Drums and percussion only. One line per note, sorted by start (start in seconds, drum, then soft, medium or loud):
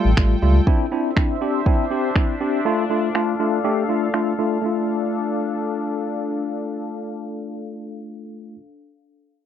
0.17 finger snap loud
0.17 kick loud
0.67 kick loud
1.17 finger snap loud
1.17 kick loud
1.66 kick loud
2.16 finger snap loud
2.16 kick loud
3.15 finger snap loud
4.14 finger snap loud